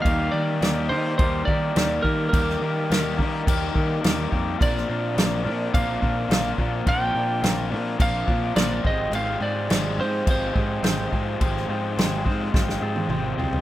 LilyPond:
<<
  \new Staff \with { instrumentName = "Lead electric guitar" } { \time 4/4 \key f \dorian \tempo 4 = 106 f''8 d''4 c''8 c''8 d''4 bes'8 | bes'2. r4 | d''2 f''2 | g''4. r8 f''4 d''8 ees''8 |
f''8 d''4 c''8 c''2~ | c''2. r4 | }
  \new Staff \with { instrumentName = "Overdriven electric guitar" } { \time 4/4 \key f \dorian <ees g bes g' bes'>8 <ees g bes g' bes'>8 <ees g bes g' bes'>8 <ees g bes g' bes'>8 <ees g bes g' bes'>8 <ees g bes g' bes'>8 <ees g bes g' bes'>8 <ees g bes g' bes'>8 | <ees g bes g' bes'>8 <ees g bes g' bes'>8 <ees g bes g' bes'>8 <ees g bes g' bes'>8 <ees g bes g' bes'>8 <ees g bes g' bes'>8 <ees g bes g' bes'>8 <ees g bes g' bes'>8 | <bes, f bes d' f' bes'>8 <bes, f bes d' f' bes'>8 <bes, f bes d' f' bes'>8 <bes, f bes d' f' bes'>8 <bes, f bes d' f' bes'>8 <bes, f bes d' f' bes'>8 <bes, f bes d' f' bes'>8 <bes, f bes d' f' bes'>8 | <bes, f bes d' f' bes'>8 <bes, f bes d' f' bes'>8 <bes, f bes d' f' bes'>8 <bes, f bes d' f' bes'>8 <bes, f bes d' f' bes'>8 <bes, f bes d' f' bes'>8 <bes, f bes d' f' bes'>8 <aes c' f' c''>8 |
<aes c' f' c''>8 <aes c' f' c''>8 <aes c' f' c''>8 <aes c' f' c''>8 <aes c' f' c''>8 <aes c' f' c''>8 <aes c' f' c''>8 <aes c' f' c''>8 | <aes c' f' c''>8 <aes c' f' c''>8 <aes c' f' c''>8 <aes c' f' c''>8 <aes c' f' c''>8 <aes c' f' c''>8 <aes c' f' c''>8 <aes c' f' c''>8 | }
  \new Staff \with { instrumentName = "Clean electric guitar" } { \time 4/4 \key f \dorian <g bes ees'>8 <g bes ees'>8 <g bes ees'>8 <g bes ees'>8 <g bes ees'>8 <g bes ees'>8 <g bes ees'>8 <g bes ees'>8 | <g bes ees'>8 <g bes ees'>8 <g bes ees'>8 <g bes ees'>8 <g bes ees'>8 <g bes ees'>8 <g bes ees'>8 <g bes ees'>8 | <f c' d'>8 <f c' d'>8 <f c' d'>8 <f c' d'>8 <f c' d'>8 <f c' d'>8 <f c' d'>8 <f c' d'>8 | <f c' d'>8 <f c' d'>8 <f c' d'>8 <f c' d'>8 <f c' d'>8 <f c' d'>8 <f c' d'>8 <f aes c' g'>8 |
<f aes c' g'>8 <f aes c' g'>8 <f aes c' g'>8 <f aes c' g'>8 <f aes c' g'>8 <f aes c' g'>8 <f aes c' g'>8 <f aes c' g'>8 | <f aes c' g'>8 <f aes c' g'>8 <f aes c' g'>8 <f aes c' g'>8 <f aes c' g'>8 <f aes c' g'>8 <f aes c' g'>8 <f aes c' g'>8 | }
  \new Staff \with { instrumentName = "Fingered electric bass" } { \clef bass \time 4/4 \key f \dorian ees,8 ees8 ees,8 ees8 ees,8 ees8 ees,8 ees8 | ees,8 ees8 ees,8 ees8 ees,8 ees8 ees,8 f,8 | bes,,8 bes,8 bes,,8 bes,8 bes,,8 bes,8 bes,,8 bes,8 | bes,,8 bes,8 bes,,8 bes,8 bes,,8 bes,8 bes,,8 aes,,8 |
aes,,8 aes,8 aes,,8 aes,8 aes,,8 aes,8 aes,,8 aes,8 | aes,,8 aes,8 aes,,8 aes,8 aes,,8 aes,8 aes,,8 c,8 | }
  \new DrumStaff \with { instrumentName = "Drums" } \drummode { \time 4/4 <cymc bd>4 <cymc sn>4 <cymc bd>8 bd8 <cymc sn>8 bd8 | <cymc bd>16 sn8. <cymc sn>8 bd8 <cymc bd>8 bd8 <cymc sn>8 bd8 | <cymc bd>16 sn8. <cymc sn>4 <cymc bd>8 bd8 <cymc sn>8 bd8 | <cymc bd>4 <cymc sn>4 <cymc bd>8 bd8 <cymc sn>8 bd8 |
cymc4 <cymc sn>4 <cymc bd>8 bd8 <cymc sn>8 bd8 | <cymc bd>16 sn8. <cymc sn>8 bd8 <bd sn>16 sn8 tommh16 toml8 tomfh16 tomfh16 | }
>>